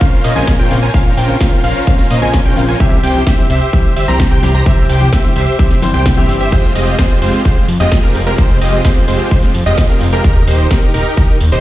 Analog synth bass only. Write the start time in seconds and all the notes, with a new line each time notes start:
0.01 A#1
0.24 A#2
0.36 A#1
0.48 A#1
0.71 A#1
0.94 A#1
1.17 A#1
1.41 A#2
1.64 A#1
1.87 A#1
2.10 A#2
2.22 A#1
2.34 A#1
2.57 A#1
2.80 C2
3.04 C2
3.27 G1
3.50 C2
3.73 C2
3.96 G1
4.08 C2
4.20 C2
4.43 C2
4.66 C2
4.90 C2
5.13 G1
5.36 C2
5.59 C2
5.83 G1
5.94 C2
6.06 C2
6.29 G1
6.52 F1
6.76 F1
6.99 F2
7.22 F1
7.45 F1
7.69 F2
7.80 F1
7.92 F1
8.15 F1
8.38 F1
8.62 F1
8.85 F2
9.08 F1
9.31 F1
9.55 F2
9.66 F1
9.78 F1
10.01 F1
10.24 D#1
10.48 D#1
10.71 D#2
10.94 D#1
11.17 D#1
11.41 D#2
11.52 D#1